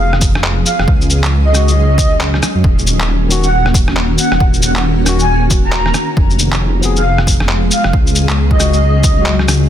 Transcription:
Already playing: F1 F3 G#3 B3 G#4 F5
0.13 cross-stick
0.21 kick, cabasa, shaker
0.35 cross-stick
0.44 clap
0.66 F5, cabasa, shaker
0.79 F1, cross-stick
0.87 C#2 F#3 C#4, kick
1.01 shaker
1.10 cabasa, shaker
1.24 clap, shaker
1.45 D#5
1.53 C#3 G#3 F#4, cross-stick, cabasa, shaker
1.67 D#5, shaker
1.98 kick, cabasa, shaker
2.20 clap, cabasa
2.34 cross-stick
2.43 cross-stick, cabasa, shaker
2.55 F#2
2.64 D#1 D#3 A#3 F#4, kick
2.79 shaker
2.87 cabasa, shaker
3.00 clap, shaker
3.28 D#3 C#4 F#4, cabasa, shaker
3.43 F#5, shaker
3.66 cross-stick
3.74 kick, cabasa, shaker
3.88 cross-stick
3.96 clap
4.18 F#5, cabasa, shaker
4.31 D#1, cross-stick
4.40 D#1, kick
4.54 shaker
4.62 F#5, cabasa, shaker
4.76 F#5, clap, shaker
5.05 D#3 C#4, cross-stick, cabasa, shaker
5.09 F#4
5.19 G#5, shaker
5.51 kick, cabasa, shaker
5.65 A#5
5.72 clap, cabasa
5.86 cross-stick
5.94 cross-stick, cabasa, shaker
6.16 F1 F3 G#3 B3 G#4, kick
6.30 shaker
6.39 cabasa, shaker
6.52 clap, shaker
6.81 F3 B3, cabasa, shaker
6.85 G#4
6.96 F5, shaker
7.18 cross-stick
7.27 kick, cabasa, shaker
7.40 cross-stick
7.49 clap
7.71 F5, cabasa, shaker
7.84 F1, cross-stick
7.93 C#2 F#3 C#4, kick
8.07 shaker
8.15 cabasa, shaker
8.29 clap, shaker
8.51 D#5, kick
8.58 C#3 G#3 F#4, cross-stick, cabasa, shaker
8.72 D#5, shaker
9.04 kick, cabasa, shaker
9.13 C#3
9.17 G#3 F#4
9.26 clap, cabasa
9.39 cross-stick
9.48 C#2, cross-stick, cabasa, shaker

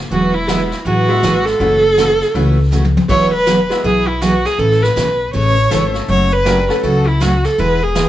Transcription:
0.11 E1 E3 F#3 B3 E4 F#4 G#4, brush sweep
0.34 E4
0.47 E3 F#3 G#3 B3 E4 F#4 G#4, snare, hi-hat pedal
0.72 snare
0.85 A1 E3 F#3 B3 E4 F#4 G#4, brush sweep
1.09 G#3 B3 E4 F#4
1.23 G#1 E3 F#3 B3 E4 G#4, snare, hi-hat pedal
1.45 A4, snare
1.60 F#1 C#3 E3 A3 C#4 E4 F#4, brush sweep
1.97 C#3 E3 A3 C#4 F#4, snare, hi-hat pedal
2.21 snare
2.34 C#2 C#3 E3 A3 C#4 E4 F#4, brush sweep
2.71 C#3 E3 A3 C#4 F#4, hi-hat pedal, high tom
2.84 high tom
2.97 high tom
3.08 E1 E3 F#3 G#3 B3 E4 F#4 G#4 C#5, brush sweep, kick, crash
3.34 B4
3.46 E3 F#3 B3 E4 G#4, snare, hi-hat pedal
3.70 G#3 B3 E4 F#4, snare
3.84 B1 E3 F#3 B3 E4 G#4, brush sweep
4.08 E4
4.21 E3 F#3 B3 E4 F#4 G#4, snare, hi-hat pedal
4.45 G#4, snare
4.58 A1 C#3 E3 A3 C#4 A4, brush sweep
4.72 snare
4.83 B4, snare
4.96 B1 C#3 E3 A3 C#4 A4, snare, hi-hat pedal
5.33 A1 C#3 E3 A3 C#4 A4 C#5, brush sweep
5.70 G#1 C#3 E3 A3 C#4 E4 A4, snare, hi-hat pedal
5.94 snare
6.08 F#1 C#3 F#3 A3 C#4 F#4 C#5, brush sweep
6.33 B4
6.45 C#3 F#3 A3 A#3 C#4 D4 F#4 G4 A#4, snare, hi-hat pedal
6.69 A3 C#4 F#4 A4, snare
6.83 C#2 C#3 F#3 A3 C#4 F#4 A4, brush sweep
7.07 E4
7.20 C#3 F#3 A3 C#4 F#4, snare, hi-hat pedal
7.44 A4, snare
7.58 E1 E3 G#3 B3 E4 G#4 B4, brush sweep
7.83 G#4
7.95 E3 G#3 B3 E4 G#4, snare, hi-hat pedal

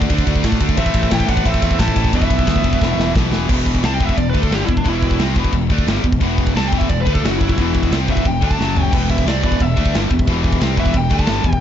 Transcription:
Already playing: A3 F#4 D5
0.01 kick
0.10 D2 D3 A3 D4, kick, ride
0.18 kick
0.27 D2, kick, ride
0.35 kick
0.44 A2 D3 A3 D4, kick, snare, ride
0.52 kick
0.60 D2 D3 A3 D4, kick, ride
0.69 kick
0.77 A1 A2 E3 A3 C4 E4 C5 E5, kick, ride
0.86 kick
0.94 A1, kick, ride
1.03 kick
1.11 A1 A2 E3 A3 E4 G5, kick, snare, ride
1.20 kick
1.28 A1 A2 E3 A3 D4 F#5, kick, ride
1.37 kick
1.45 A1 A2 E3 A3 C4 E5, kick, ride
1.54 kick
1.62 E2 C4 E5, kick, ride
1.71 kick
1.79 A1 A2 E3 A3 E4 A5, kick, snare, ride
1.88 kick
1.95 A1 A2 E3 A3, kick, ride
2.05 kick
2.12 E1 E2 B2 E3 G3 B3 B4 E5, kick, ride
2.22 kick
2.30 B1, kick, ride
2.39 kick
2.46 D2 E2 B2 E3, kick, snare, ride
2.56 kick
2.63 E1 E2 B2 E3, kick, ride
2.73 kick
2.80 E1 E2 B2 E3, kick, snare
2.97 E1, snare
3.14 B1 E2 B2 E3, kick, snare
3.31 E1 E2 B2 E3, snare
3.49 E1 E2 B2 E3, kick, crash, china
3.66 kick
3.75 kick
3.83 C2 C3 G3 C4 A5, snare, china
3.94 G5
4.00 E1 E2 B2 E3, kick
4.05 E5, kick
4.17 E1 E2 B2 D5, kick, china
4.29 D3 B4
4.34 D2 A3 D4, kick
4.42 A4, kick
4.51 G1 G2 D3 G3 G4, snare, china
4.65 E1 E2 B2 E4, kick
4.77 D4, kick
4.84 E1 E2 B2 E3, kick, china
4.88 E4
5.02 kick
5.11 kick
5.18 C2 C3 G3 C4, snare, china
5.35 E1 E2 B2 E3, kick
5.44 kick
5.52 E1 E2 B2, kick, china
5.70 D2 D3 A3 D4, kick
5.78 kick
5.86 G1 G2 D3 G3, snare, china
6.03 E1 E2 B2, kick
6.12 kick
6.20 E1 E2 B2 E3, kick, china
6.38 kick
6.47 kick
6.54 C2 C3 G3 C4 A5, snare, china
6.68 G5
6.72 E1 E2 B2 E3, kick
6.78 E5, kick
6.89 E1 E2 B2 D5, kick, china
7.01 B4
7.06 D2 D3 A3 D4, kick
7.13 A4, kick
7.23 F#1 F#2 C#3 F#3 F#4, snare, china
7.37 E4
7.41 kick
7.49 E4, kick
7.57 E1 E2 B2 E3 E4, kick, china
7.75 kick
7.83 kick
7.91 C2 C3 G3 C4, snare, china
8.07 E1 E2 B2 E3 E5, kick
8.17 kick
8.24 E1 E2 B2 G5, kick, china
8.41 D2 D3 A3 D4 A5, kick
8.51 kick
8.58 F#1 F#2 C#3 F#3, snare
8.77 floor tom
8.92 E1 E2 B2 E3 G3 E4 B4 G5, kick, crash, china
9.10 E5, kick
9.18 kick
9.25 C2 C3 G3 C4 D5, snare, china
9.43 E1 E2 B2 E3 D5, kick
9.52 kick
9.60 E1 E2 B2 E5, kick, china
9.77 D2 D3 A3 D4, kick
9.86 kick
9.94 G1 G2 D3 G3, snare, china
10.11 E1 E2 B2, kick
10.19 kick
10.28 E1 E2 B2 E3, kick, china
10.44 kick
10.53 kick
10.60 C2 C3 G3 C4, snare, china
10.77 E1 E2 B2 E3 E5, kick
10.86 kick
10.94 E1 E2 B2 A4 G5, kick, china
11.10 D2 D3 A3 D4 A5, kick
11.19 kick
11.26 G1 G2 D3 G3, snare, china
11.44 E1 E2 B2, kick
11.53 kick

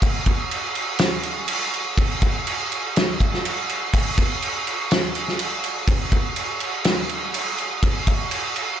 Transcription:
0.02 kick, crash
0.26 kick, crash
0.51 crash
0.75 crash
0.99 snare, crash
1.23 crash
1.48 crash
1.74 crash
1.98 kick, crash
2.22 kick, crash
2.47 crash
2.72 crash
2.96 snare, crash
3.20 kick, crash
3.34 snare
3.45 crash
3.69 crash
3.94 kick, crash
4.18 kick, crash
4.42 crash
4.67 crash
4.91 snare, crash
5.15 crash
5.28 snare
5.39 crash
5.64 crash
5.87 kick, crash
6.12 kick, crash
6.36 crash
6.60 crash
6.84 snare, crash
7.09 crash
7.34 crash
7.58 crash
7.83 kick, crash
8.07 kick, crash
8.31 crash
8.56 crash

